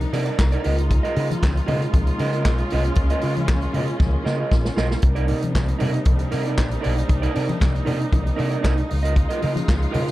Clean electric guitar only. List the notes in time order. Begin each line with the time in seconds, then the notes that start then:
0.01 muted clean electric guitar stroke
0.13 D#4 A#4 D5
0.25 D#4 A#4 D5
0.39 muted clean electric guitar stroke
0.52 D#4 A#4 D5
0.64 F4 A#4 D#5
0.79 muted clean electric guitar stroke
0.90 muted clean electric guitar stroke
1.03 F4 A#4 D#5
1.16 F4 A#4 D#5
1.30 muted clean electric guitar stroke
1.55 muted clean electric guitar stroke
1.66 F4 A#4 D#5
1.83 muted clean electric guitar stroke
1.95 muted clean electric guitar stroke
2.08 muted clean electric guitar stroke
2.19 F4 A#4 D#5
2.34 F4 A#4 D#5
2.59 muted clean electric guitar stroke
2.72 F4 A#4 D#5
2.85 muted clean electric guitar stroke
2.97 muted clean electric guitar stroke
3.10 F4 A#4 D#5
3.23 F4 A#4 D#5
3.36 muted clean electric guitar stroke
3.62 muted clean electric guitar stroke
3.73 F4 A#4 D#5
3.87 muted clean electric guitar stroke
3.99 muted clean electric guitar stroke
4.13 muted clean electric guitar stroke
4.23 F4 A#4 D#5
4.38 F4 A#4 D#5
4.64 muted clean electric guitar stroke
4.76 F4 A#4 D#5
4.90 muted clean electric guitar stroke
5.01 muted clean electric guitar stroke
5.15 D#4 A#4 D5
5.27 D#4 A#4 D5
5.41 muted clean electric guitar stroke
5.68 muted clean electric guitar stroke
5.79 D#4 A#4 D5
5.93 muted clean electric guitar stroke
6.06 muted clean electric guitar stroke
6.19 muted clean electric guitar stroke
6.31 D#4 A#4 D5
6.45 D#4 A#4 D5
6.69 muted clean electric guitar stroke
6.81 D#4 A#4 D5
6.96 muted clean electric guitar stroke
7.08 muted clean electric guitar stroke
7.22 D#4 A#4 D5
7.34 D#4 A#4 D5
7.48 muted clean electric guitar stroke
7.74 muted clean electric guitar stroke
7.85 D#4 A#4 D5
8.00 muted clean electric guitar stroke
8.12 muted clean electric guitar stroke
8.24 muted clean electric guitar stroke
8.36 D#4 A#4 D5
8.50 D#4 A#4 D5
8.62 D#4 A#4 D5
8.76 muted clean electric guitar stroke
8.89 muted clean electric guitar stroke
9.03 F4 A#4 D#5
9.16 muted clean electric guitar stroke
9.29 F4 A#4 D#5
9.41 F4 A#4 D#5
9.55 muted clean electric guitar stroke
9.81 muted clean electric guitar stroke
9.91 F4 A#4 D#5
10.05 muted clean electric guitar stroke